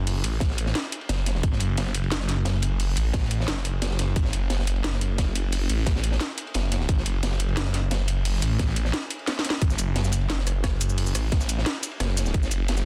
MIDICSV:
0, 0, Header, 1, 3, 480
1, 0, Start_track
1, 0, Tempo, 340909
1, 99, Time_signature, 4, 2, 24, 8
1, 18093, End_track
2, 0, Start_track
2, 0, Title_t, "Detuned saw bass"
2, 0, Program_c, 0, 39
2, 0, Note_on_c, 0, 30, 100
2, 320, Note_off_c, 0, 30, 0
2, 338, Note_on_c, 0, 33, 97
2, 1040, Note_off_c, 0, 33, 0
2, 1539, Note_on_c, 0, 30, 93
2, 2000, Note_off_c, 0, 30, 0
2, 2019, Note_on_c, 0, 32, 91
2, 2240, Note_off_c, 0, 32, 0
2, 2259, Note_on_c, 0, 30, 99
2, 4160, Note_off_c, 0, 30, 0
2, 4179, Note_on_c, 0, 33, 103
2, 4880, Note_off_c, 0, 33, 0
2, 4899, Note_on_c, 0, 30, 99
2, 5840, Note_off_c, 0, 30, 0
2, 5858, Note_on_c, 0, 32, 92
2, 6079, Note_off_c, 0, 32, 0
2, 6099, Note_on_c, 0, 30, 97
2, 8000, Note_off_c, 0, 30, 0
2, 8019, Note_on_c, 0, 33, 101
2, 8720, Note_off_c, 0, 33, 0
2, 9219, Note_on_c, 0, 30, 100
2, 9680, Note_off_c, 0, 30, 0
2, 9699, Note_on_c, 0, 32, 96
2, 9920, Note_off_c, 0, 32, 0
2, 9939, Note_on_c, 0, 30, 106
2, 11840, Note_off_c, 0, 30, 0
2, 11859, Note_on_c, 0, 33, 104
2, 12560, Note_off_c, 0, 33, 0
2, 13539, Note_on_c, 0, 32, 93
2, 13760, Note_off_c, 0, 32, 0
2, 13779, Note_on_c, 0, 30, 105
2, 15680, Note_off_c, 0, 30, 0
2, 15699, Note_on_c, 0, 33, 99
2, 16400, Note_off_c, 0, 33, 0
2, 16899, Note_on_c, 0, 30, 99
2, 17360, Note_off_c, 0, 30, 0
2, 17379, Note_on_c, 0, 32, 96
2, 17600, Note_off_c, 0, 32, 0
2, 17618, Note_on_c, 0, 30, 104
2, 18093, Note_off_c, 0, 30, 0
2, 18093, End_track
3, 0, Start_track
3, 0, Title_t, "Drums"
3, 99, Note_on_c, 9, 42, 81
3, 103, Note_on_c, 9, 46, 77
3, 239, Note_off_c, 9, 42, 0
3, 244, Note_off_c, 9, 46, 0
3, 332, Note_on_c, 9, 51, 75
3, 338, Note_on_c, 9, 42, 94
3, 473, Note_off_c, 9, 51, 0
3, 479, Note_off_c, 9, 42, 0
3, 568, Note_on_c, 9, 38, 123
3, 579, Note_on_c, 9, 36, 102
3, 579, Note_on_c, 9, 42, 78
3, 581, Note_on_c, 9, 51, 82
3, 708, Note_off_c, 9, 38, 0
3, 708, Note_on_c, 9, 38, 58
3, 720, Note_off_c, 9, 36, 0
3, 720, Note_off_c, 9, 42, 0
3, 721, Note_off_c, 9, 51, 0
3, 813, Note_on_c, 9, 51, 72
3, 819, Note_on_c, 9, 42, 97
3, 849, Note_off_c, 9, 38, 0
3, 930, Note_on_c, 9, 38, 57
3, 953, Note_off_c, 9, 51, 0
3, 960, Note_off_c, 9, 42, 0
3, 1059, Note_off_c, 9, 38, 0
3, 1059, Note_on_c, 9, 38, 122
3, 1059, Note_on_c, 9, 42, 77
3, 1060, Note_on_c, 9, 51, 90
3, 1199, Note_off_c, 9, 38, 0
3, 1199, Note_off_c, 9, 42, 0
3, 1201, Note_off_c, 9, 51, 0
3, 1299, Note_on_c, 9, 42, 99
3, 1306, Note_on_c, 9, 51, 66
3, 1424, Note_off_c, 9, 51, 0
3, 1424, Note_on_c, 9, 51, 45
3, 1440, Note_off_c, 9, 42, 0
3, 1535, Note_on_c, 9, 38, 126
3, 1536, Note_off_c, 9, 51, 0
3, 1536, Note_on_c, 9, 51, 97
3, 1539, Note_on_c, 9, 42, 77
3, 1676, Note_off_c, 9, 38, 0
3, 1677, Note_off_c, 9, 51, 0
3, 1680, Note_off_c, 9, 42, 0
3, 1779, Note_on_c, 9, 42, 90
3, 1779, Note_on_c, 9, 51, 69
3, 1782, Note_on_c, 9, 38, 54
3, 1900, Note_off_c, 9, 38, 0
3, 1900, Note_on_c, 9, 38, 41
3, 1920, Note_off_c, 9, 42, 0
3, 1920, Note_off_c, 9, 51, 0
3, 2018, Note_on_c, 9, 51, 86
3, 2019, Note_on_c, 9, 36, 126
3, 2019, Note_on_c, 9, 42, 74
3, 2041, Note_off_c, 9, 38, 0
3, 2144, Note_on_c, 9, 38, 53
3, 2159, Note_off_c, 9, 51, 0
3, 2160, Note_off_c, 9, 36, 0
3, 2160, Note_off_c, 9, 42, 0
3, 2249, Note_on_c, 9, 51, 70
3, 2259, Note_on_c, 9, 42, 91
3, 2285, Note_off_c, 9, 38, 0
3, 2390, Note_off_c, 9, 51, 0
3, 2400, Note_off_c, 9, 42, 0
3, 2499, Note_on_c, 9, 42, 75
3, 2504, Note_on_c, 9, 51, 83
3, 2505, Note_on_c, 9, 38, 117
3, 2621, Note_off_c, 9, 38, 0
3, 2621, Note_on_c, 9, 38, 50
3, 2640, Note_off_c, 9, 42, 0
3, 2645, Note_off_c, 9, 51, 0
3, 2735, Note_on_c, 9, 51, 68
3, 2739, Note_on_c, 9, 42, 93
3, 2762, Note_off_c, 9, 38, 0
3, 2868, Note_off_c, 9, 51, 0
3, 2868, Note_on_c, 9, 51, 45
3, 2879, Note_off_c, 9, 42, 0
3, 2974, Note_off_c, 9, 51, 0
3, 2974, Note_on_c, 9, 51, 79
3, 2979, Note_on_c, 9, 38, 123
3, 2979, Note_on_c, 9, 42, 75
3, 3096, Note_off_c, 9, 38, 0
3, 3096, Note_on_c, 9, 38, 53
3, 3115, Note_off_c, 9, 51, 0
3, 3120, Note_off_c, 9, 42, 0
3, 3211, Note_on_c, 9, 51, 67
3, 3219, Note_off_c, 9, 38, 0
3, 3219, Note_on_c, 9, 38, 39
3, 3219, Note_on_c, 9, 42, 90
3, 3351, Note_off_c, 9, 51, 0
3, 3360, Note_off_c, 9, 38, 0
3, 3360, Note_off_c, 9, 42, 0
3, 3453, Note_on_c, 9, 38, 119
3, 3459, Note_on_c, 9, 42, 76
3, 3461, Note_on_c, 9, 51, 93
3, 3593, Note_off_c, 9, 38, 0
3, 3600, Note_off_c, 9, 42, 0
3, 3602, Note_off_c, 9, 51, 0
3, 3690, Note_on_c, 9, 51, 71
3, 3699, Note_on_c, 9, 42, 89
3, 3830, Note_off_c, 9, 51, 0
3, 3839, Note_off_c, 9, 42, 0
3, 3938, Note_on_c, 9, 46, 81
3, 3939, Note_on_c, 9, 42, 77
3, 4079, Note_off_c, 9, 46, 0
3, 4080, Note_off_c, 9, 42, 0
3, 4162, Note_on_c, 9, 51, 71
3, 4179, Note_on_c, 9, 42, 89
3, 4303, Note_off_c, 9, 51, 0
3, 4320, Note_off_c, 9, 42, 0
3, 4413, Note_on_c, 9, 38, 127
3, 4419, Note_on_c, 9, 36, 99
3, 4419, Note_on_c, 9, 42, 73
3, 4424, Note_on_c, 9, 51, 90
3, 4531, Note_off_c, 9, 38, 0
3, 4531, Note_on_c, 9, 38, 59
3, 4559, Note_off_c, 9, 42, 0
3, 4560, Note_off_c, 9, 36, 0
3, 4565, Note_off_c, 9, 51, 0
3, 4658, Note_on_c, 9, 42, 85
3, 4664, Note_on_c, 9, 51, 61
3, 4672, Note_off_c, 9, 38, 0
3, 4791, Note_on_c, 9, 38, 59
3, 4799, Note_off_c, 9, 42, 0
3, 4805, Note_off_c, 9, 51, 0
3, 4891, Note_on_c, 9, 51, 77
3, 4898, Note_off_c, 9, 38, 0
3, 4898, Note_on_c, 9, 38, 124
3, 4898, Note_on_c, 9, 42, 77
3, 5014, Note_off_c, 9, 38, 0
3, 5014, Note_on_c, 9, 38, 46
3, 5032, Note_off_c, 9, 51, 0
3, 5039, Note_off_c, 9, 42, 0
3, 5138, Note_on_c, 9, 42, 90
3, 5139, Note_on_c, 9, 51, 57
3, 5155, Note_off_c, 9, 38, 0
3, 5279, Note_off_c, 9, 42, 0
3, 5280, Note_off_c, 9, 51, 0
3, 5375, Note_on_c, 9, 51, 87
3, 5376, Note_on_c, 9, 38, 111
3, 5378, Note_on_c, 9, 42, 76
3, 5494, Note_off_c, 9, 38, 0
3, 5494, Note_on_c, 9, 38, 51
3, 5516, Note_off_c, 9, 51, 0
3, 5519, Note_off_c, 9, 42, 0
3, 5617, Note_on_c, 9, 42, 90
3, 5622, Note_on_c, 9, 51, 79
3, 5625, Note_off_c, 9, 38, 0
3, 5625, Note_on_c, 9, 38, 52
3, 5758, Note_off_c, 9, 42, 0
3, 5763, Note_off_c, 9, 51, 0
3, 5766, Note_off_c, 9, 38, 0
3, 5858, Note_on_c, 9, 36, 119
3, 5858, Note_on_c, 9, 42, 76
3, 5862, Note_on_c, 9, 51, 97
3, 5974, Note_on_c, 9, 38, 48
3, 5998, Note_off_c, 9, 42, 0
3, 5999, Note_off_c, 9, 36, 0
3, 6003, Note_off_c, 9, 51, 0
3, 6098, Note_on_c, 9, 42, 86
3, 6112, Note_on_c, 9, 51, 61
3, 6115, Note_off_c, 9, 38, 0
3, 6239, Note_off_c, 9, 42, 0
3, 6253, Note_off_c, 9, 51, 0
3, 6334, Note_on_c, 9, 38, 115
3, 6338, Note_on_c, 9, 42, 75
3, 6342, Note_on_c, 9, 51, 84
3, 6459, Note_off_c, 9, 38, 0
3, 6459, Note_on_c, 9, 38, 55
3, 6479, Note_off_c, 9, 42, 0
3, 6483, Note_off_c, 9, 51, 0
3, 6578, Note_on_c, 9, 42, 93
3, 6584, Note_on_c, 9, 51, 65
3, 6600, Note_off_c, 9, 38, 0
3, 6702, Note_off_c, 9, 51, 0
3, 6702, Note_on_c, 9, 51, 44
3, 6719, Note_off_c, 9, 42, 0
3, 6814, Note_off_c, 9, 51, 0
3, 6814, Note_on_c, 9, 51, 76
3, 6819, Note_on_c, 9, 38, 116
3, 6819, Note_on_c, 9, 42, 77
3, 6941, Note_off_c, 9, 38, 0
3, 6941, Note_on_c, 9, 38, 54
3, 6955, Note_off_c, 9, 51, 0
3, 6959, Note_off_c, 9, 42, 0
3, 7059, Note_on_c, 9, 42, 90
3, 7060, Note_on_c, 9, 51, 65
3, 7082, Note_off_c, 9, 38, 0
3, 7200, Note_off_c, 9, 42, 0
3, 7201, Note_off_c, 9, 51, 0
3, 7298, Note_on_c, 9, 38, 109
3, 7299, Note_on_c, 9, 36, 62
3, 7299, Note_on_c, 9, 42, 75
3, 7301, Note_on_c, 9, 51, 87
3, 7438, Note_off_c, 9, 38, 0
3, 7439, Note_off_c, 9, 36, 0
3, 7439, Note_off_c, 9, 42, 0
3, 7442, Note_off_c, 9, 51, 0
3, 7539, Note_on_c, 9, 42, 88
3, 7545, Note_on_c, 9, 51, 77
3, 7680, Note_off_c, 9, 42, 0
3, 7686, Note_off_c, 9, 51, 0
3, 7774, Note_on_c, 9, 46, 75
3, 7779, Note_on_c, 9, 42, 79
3, 7915, Note_off_c, 9, 46, 0
3, 7920, Note_off_c, 9, 42, 0
3, 8019, Note_on_c, 9, 42, 90
3, 8029, Note_on_c, 9, 51, 66
3, 8160, Note_off_c, 9, 42, 0
3, 8169, Note_off_c, 9, 51, 0
3, 8256, Note_on_c, 9, 38, 114
3, 8258, Note_on_c, 9, 42, 78
3, 8259, Note_on_c, 9, 36, 94
3, 8268, Note_on_c, 9, 51, 94
3, 8382, Note_off_c, 9, 38, 0
3, 8382, Note_on_c, 9, 38, 53
3, 8399, Note_off_c, 9, 36, 0
3, 8399, Note_off_c, 9, 42, 0
3, 8408, Note_off_c, 9, 51, 0
3, 8495, Note_on_c, 9, 51, 61
3, 8499, Note_on_c, 9, 42, 93
3, 8523, Note_off_c, 9, 38, 0
3, 8612, Note_on_c, 9, 38, 54
3, 8636, Note_off_c, 9, 51, 0
3, 8640, Note_off_c, 9, 42, 0
3, 8728, Note_on_c, 9, 51, 90
3, 8739, Note_off_c, 9, 38, 0
3, 8739, Note_on_c, 9, 38, 110
3, 8739, Note_on_c, 9, 42, 75
3, 8869, Note_off_c, 9, 51, 0
3, 8879, Note_off_c, 9, 38, 0
3, 8879, Note_off_c, 9, 42, 0
3, 8979, Note_on_c, 9, 42, 91
3, 8985, Note_on_c, 9, 51, 65
3, 9112, Note_off_c, 9, 51, 0
3, 9112, Note_on_c, 9, 51, 49
3, 9120, Note_off_c, 9, 42, 0
3, 9211, Note_off_c, 9, 51, 0
3, 9211, Note_on_c, 9, 51, 92
3, 9219, Note_on_c, 9, 42, 73
3, 9224, Note_on_c, 9, 38, 126
3, 9351, Note_off_c, 9, 51, 0
3, 9360, Note_off_c, 9, 42, 0
3, 9364, Note_off_c, 9, 38, 0
3, 9459, Note_on_c, 9, 42, 93
3, 9462, Note_on_c, 9, 38, 47
3, 9466, Note_on_c, 9, 51, 71
3, 9577, Note_off_c, 9, 38, 0
3, 9577, Note_on_c, 9, 38, 40
3, 9600, Note_off_c, 9, 42, 0
3, 9607, Note_off_c, 9, 51, 0
3, 9699, Note_on_c, 9, 36, 115
3, 9699, Note_on_c, 9, 42, 82
3, 9706, Note_on_c, 9, 51, 89
3, 9718, Note_off_c, 9, 38, 0
3, 9820, Note_on_c, 9, 38, 49
3, 9840, Note_off_c, 9, 36, 0
3, 9840, Note_off_c, 9, 42, 0
3, 9847, Note_off_c, 9, 51, 0
3, 9938, Note_on_c, 9, 51, 72
3, 9939, Note_on_c, 9, 42, 98
3, 9961, Note_off_c, 9, 38, 0
3, 10079, Note_off_c, 9, 42, 0
3, 10079, Note_off_c, 9, 51, 0
3, 10176, Note_on_c, 9, 51, 87
3, 10178, Note_on_c, 9, 42, 83
3, 10181, Note_on_c, 9, 38, 112
3, 10293, Note_off_c, 9, 38, 0
3, 10293, Note_on_c, 9, 38, 57
3, 10317, Note_off_c, 9, 51, 0
3, 10319, Note_off_c, 9, 42, 0
3, 10412, Note_on_c, 9, 51, 69
3, 10418, Note_on_c, 9, 42, 97
3, 10434, Note_off_c, 9, 38, 0
3, 10540, Note_off_c, 9, 51, 0
3, 10540, Note_on_c, 9, 51, 45
3, 10559, Note_off_c, 9, 42, 0
3, 10656, Note_off_c, 9, 51, 0
3, 10656, Note_on_c, 9, 51, 84
3, 10658, Note_on_c, 9, 38, 115
3, 10658, Note_on_c, 9, 42, 80
3, 10775, Note_off_c, 9, 38, 0
3, 10775, Note_on_c, 9, 38, 58
3, 10797, Note_off_c, 9, 51, 0
3, 10799, Note_off_c, 9, 42, 0
3, 10898, Note_off_c, 9, 38, 0
3, 10898, Note_on_c, 9, 38, 36
3, 10898, Note_on_c, 9, 42, 97
3, 10899, Note_on_c, 9, 51, 66
3, 11039, Note_off_c, 9, 38, 0
3, 11039, Note_off_c, 9, 42, 0
3, 11040, Note_off_c, 9, 51, 0
3, 11138, Note_on_c, 9, 42, 80
3, 11141, Note_on_c, 9, 51, 97
3, 11143, Note_on_c, 9, 38, 109
3, 11279, Note_off_c, 9, 42, 0
3, 11282, Note_off_c, 9, 51, 0
3, 11284, Note_off_c, 9, 38, 0
3, 11371, Note_on_c, 9, 51, 77
3, 11378, Note_on_c, 9, 42, 91
3, 11512, Note_off_c, 9, 51, 0
3, 11519, Note_off_c, 9, 42, 0
3, 11619, Note_on_c, 9, 42, 83
3, 11624, Note_on_c, 9, 46, 90
3, 11760, Note_off_c, 9, 42, 0
3, 11765, Note_off_c, 9, 46, 0
3, 11858, Note_on_c, 9, 42, 102
3, 11866, Note_on_c, 9, 51, 67
3, 11999, Note_off_c, 9, 42, 0
3, 12007, Note_off_c, 9, 51, 0
3, 12099, Note_on_c, 9, 36, 93
3, 12099, Note_on_c, 9, 38, 118
3, 12099, Note_on_c, 9, 42, 83
3, 12100, Note_on_c, 9, 51, 89
3, 12227, Note_off_c, 9, 38, 0
3, 12227, Note_on_c, 9, 38, 49
3, 12240, Note_off_c, 9, 36, 0
3, 12240, Note_off_c, 9, 42, 0
3, 12241, Note_off_c, 9, 51, 0
3, 12339, Note_on_c, 9, 42, 99
3, 12347, Note_on_c, 9, 51, 69
3, 12367, Note_off_c, 9, 38, 0
3, 12456, Note_on_c, 9, 38, 61
3, 12479, Note_off_c, 9, 42, 0
3, 12487, Note_off_c, 9, 51, 0
3, 12579, Note_off_c, 9, 38, 0
3, 12579, Note_on_c, 9, 38, 108
3, 12579, Note_on_c, 9, 42, 81
3, 12580, Note_on_c, 9, 51, 79
3, 12720, Note_off_c, 9, 38, 0
3, 12720, Note_off_c, 9, 42, 0
3, 12721, Note_off_c, 9, 51, 0
3, 12819, Note_on_c, 9, 42, 99
3, 12822, Note_on_c, 9, 51, 70
3, 12940, Note_off_c, 9, 51, 0
3, 12940, Note_on_c, 9, 51, 44
3, 12960, Note_off_c, 9, 42, 0
3, 13052, Note_off_c, 9, 51, 0
3, 13052, Note_on_c, 9, 51, 92
3, 13059, Note_on_c, 9, 38, 64
3, 13059, Note_on_c, 9, 42, 81
3, 13065, Note_off_c, 9, 38, 0
3, 13065, Note_on_c, 9, 38, 126
3, 13193, Note_off_c, 9, 51, 0
3, 13200, Note_off_c, 9, 42, 0
3, 13206, Note_off_c, 9, 38, 0
3, 13219, Note_on_c, 9, 38, 85
3, 13299, Note_on_c, 9, 42, 94
3, 13299, Note_on_c, 9, 51, 69
3, 13300, Note_off_c, 9, 38, 0
3, 13300, Note_on_c, 9, 38, 45
3, 13379, Note_off_c, 9, 38, 0
3, 13379, Note_on_c, 9, 38, 95
3, 13427, Note_off_c, 9, 38, 0
3, 13427, Note_on_c, 9, 38, 46
3, 13439, Note_off_c, 9, 51, 0
3, 13440, Note_off_c, 9, 42, 0
3, 13539, Note_on_c, 9, 36, 115
3, 13539, Note_on_c, 9, 42, 80
3, 13543, Note_on_c, 9, 51, 81
3, 13568, Note_off_c, 9, 38, 0
3, 13659, Note_on_c, 9, 69, 28
3, 13663, Note_on_c, 9, 38, 49
3, 13679, Note_off_c, 9, 42, 0
3, 13680, Note_off_c, 9, 36, 0
3, 13684, Note_off_c, 9, 51, 0
3, 13769, Note_on_c, 9, 51, 63
3, 13779, Note_off_c, 9, 69, 0
3, 13779, Note_on_c, 9, 42, 95
3, 13779, Note_on_c, 9, 69, 57
3, 13804, Note_off_c, 9, 38, 0
3, 13910, Note_off_c, 9, 51, 0
3, 13920, Note_off_c, 9, 42, 0
3, 13920, Note_off_c, 9, 69, 0
3, 14017, Note_on_c, 9, 51, 80
3, 14019, Note_on_c, 9, 38, 120
3, 14020, Note_on_c, 9, 42, 84
3, 14139, Note_on_c, 9, 69, 27
3, 14144, Note_off_c, 9, 38, 0
3, 14144, Note_on_c, 9, 38, 48
3, 14158, Note_off_c, 9, 51, 0
3, 14160, Note_off_c, 9, 42, 0
3, 14244, Note_on_c, 9, 51, 69
3, 14259, Note_off_c, 9, 69, 0
3, 14259, Note_on_c, 9, 42, 98
3, 14259, Note_on_c, 9, 69, 57
3, 14284, Note_off_c, 9, 38, 0
3, 14379, Note_off_c, 9, 51, 0
3, 14379, Note_on_c, 9, 51, 44
3, 14400, Note_off_c, 9, 42, 0
3, 14400, Note_off_c, 9, 69, 0
3, 14491, Note_off_c, 9, 51, 0
3, 14491, Note_on_c, 9, 51, 78
3, 14499, Note_on_c, 9, 38, 113
3, 14499, Note_on_c, 9, 42, 84
3, 14622, Note_off_c, 9, 38, 0
3, 14622, Note_on_c, 9, 38, 57
3, 14632, Note_off_c, 9, 51, 0
3, 14640, Note_off_c, 9, 42, 0
3, 14739, Note_on_c, 9, 37, 37
3, 14739, Note_on_c, 9, 42, 100
3, 14739, Note_on_c, 9, 69, 60
3, 14748, Note_on_c, 9, 51, 69
3, 14762, Note_off_c, 9, 38, 0
3, 14880, Note_off_c, 9, 37, 0
3, 14880, Note_off_c, 9, 42, 0
3, 14880, Note_off_c, 9, 69, 0
3, 14889, Note_off_c, 9, 51, 0
3, 14975, Note_on_c, 9, 38, 118
3, 14977, Note_on_c, 9, 51, 86
3, 14979, Note_on_c, 9, 36, 59
3, 14979, Note_on_c, 9, 37, 56
3, 14979, Note_on_c, 9, 42, 81
3, 15116, Note_off_c, 9, 38, 0
3, 15118, Note_off_c, 9, 51, 0
3, 15120, Note_off_c, 9, 36, 0
3, 15120, Note_off_c, 9, 37, 0
3, 15120, Note_off_c, 9, 42, 0
3, 15219, Note_on_c, 9, 42, 94
3, 15219, Note_on_c, 9, 69, 59
3, 15226, Note_on_c, 9, 51, 66
3, 15339, Note_off_c, 9, 69, 0
3, 15339, Note_on_c, 9, 69, 29
3, 15359, Note_off_c, 9, 42, 0
3, 15367, Note_off_c, 9, 51, 0
3, 15453, Note_on_c, 9, 46, 75
3, 15458, Note_on_c, 9, 42, 76
3, 15480, Note_off_c, 9, 69, 0
3, 15579, Note_on_c, 9, 69, 26
3, 15594, Note_off_c, 9, 46, 0
3, 15599, Note_off_c, 9, 42, 0
3, 15699, Note_off_c, 9, 69, 0
3, 15699, Note_on_c, 9, 37, 34
3, 15699, Note_on_c, 9, 42, 92
3, 15699, Note_on_c, 9, 69, 58
3, 15700, Note_on_c, 9, 51, 70
3, 15840, Note_off_c, 9, 37, 0
3, 15840, Note_off_c, 9, 42, 0
3, 15840, Note_off_c, 9, 51, 0
3, 15840, Note_off_c, 9, 69, 0
3, 15938, Note_on_c, 9, 42, 78
3, 15939, Note_on_c, 9, 36, 104
3, 15942, Note_on_c, 9, 51, 94
3, 15945, Note_on_c, 9, 38, 117
3, 16037, Note_off_c, 9, 38, 0
3, 16037, Note_on_c, 9, 38, 50
3, 16059, Note_on_c, 9, 69, 26
3, 16079, Note_off_c, 9, 42, 0
3, 16080, Note_off_c, 9, 36, 0
3, 16083, Note_off_c, 9, 51, 0
3, 16175, Note_on_c, 9, 51, 72
3, 16178, Note_off_c, 9, 38, 0
3, 16179, Note_off_c, 9, 69, 0
3, 16179, Note_on_c, 9, 42, 95
3, 16179, Note_on_c, 9, 69, 57
3, 16306, Note_on_c, 9, 38, 58
3, 16316, Note_off_c, 9, 51, 0
3, 16319, Note_off_c, 9, 42, 0
3, 16319, Note_off_c, 9, 69, 0
3, 16419, Note_off_c, 9, 38, 0
3, 16419, Note_on_c, 9, 38, 123
3, 16419, Note_on_c, 9, 42, 81
3, 16421, Note_on_c, 9, 51, 83
3, 16559, Note_off_c, 9, 38, 0
3, 16559, Note_off_c, 9, 42, 0
3, 16562, Note_off_c, 9, 51, 0
3, 16651, Note_on_c, 9, 51, 71
3, 16658, Note_on_c, 9, 42, 95
3, 16658, Note_on_c, 9, 69, 61
3, 16776, Note_off_c, 9, 51, 0
3, 16776, Note_on_c, 9, 51, 48
3, 16799, Note_off_c, 9, 42, 0
3, 16799, Note_off_c, 9, 69, 0
3, 16897, Note_off_c, 9, 51, 0
3, 16897, Note_on_c, 9, 38, 126
3, 16897, Note_on_c, 9, 51, 84
3, 16899, Note_on_c, 9, 37, 36
3, 16899, Note_on_c, 9, 42, 82
3, 17038, Note_off_c, 9, 38, 0
3, 17038, Note_off_c, 9, 51, 0
3, 17040, Note_off_c, 9, 37, 0
3, 17040, Note_off_c, 9, 42, 0
3, 17138, Note_on_c, 9, 42, 91
3, 17138, Note_on_c, 9, 69, 55
3, 17140, Note_on_c, 9, 51, 81
3, 17142, Note_on_c, 9, 38, 47
3, 17258, Note_off_c, 9, 69, 0
3, 17258, Note_on_c, 9, 69, 26
3, 17268, Note_off_c, 9, 38, 0
3, 17268, Note_on_c, 9, 38, 43
3, 17279, Note_off_c, 9, 42, 0
3, 17281, Note_off_c, 9, 51, 0
3, 17377, Note_on_c, 9, 51, 94
3, 17378, Note_on_c, 9, 42, 78
3, 17379, Note_on_c, 9, 36, 126
3, 17399, Note_off_c, 9, 69, 0
3, 17409, Note_off_c, 9, 38, 0
3, 17498, Note_on_c, 9, 69, 26
3, 17502, Note_on_c, 9, 38, 50
3, 17518, Note_off_c, 9, 51, 0
3, 17519, Note_off_c, 9, 42, 0
3, 17520, Note_off_c, 9, 36, 0
3, 17611, Note_on_c, 9, 51, 67
3, 17619, Note_off_c, 9, 69, 0
3, 17619, Note_on_c, 9, 42, 88
3, 17619, Note_on_c, 9, 69, 57
3, 17642, Note_off_c, 9, 38, 0
3, 17752, Note_off_c, 9, 51, 0
3, 17760, Note_off_c, 9, 42, 0
3, 17760, Note_off_c, 9, 69, 0
3, 17857, Note_on_c, 9, 51, 94
3, 17859, Note_on_c, 9, 42, 78
3, 17866, Note_on_c, 9, 38, 109
3, 17977, Note_off_c, 9, 38, 0
3, 17977, Note_on_c, 9, 38, 57
3, 17978, Note_on_c, 9, 69, 27
3, 17997, Note_off_c, 9, 51, 0
3, 18000, Note_off_c, 9, 42, 0
3, 18093, Note_off_c, 9, 38, 0
3, 18093, Note_off_c, 9, 69, 0
3, 18093, End_track
0, 0, End_of_file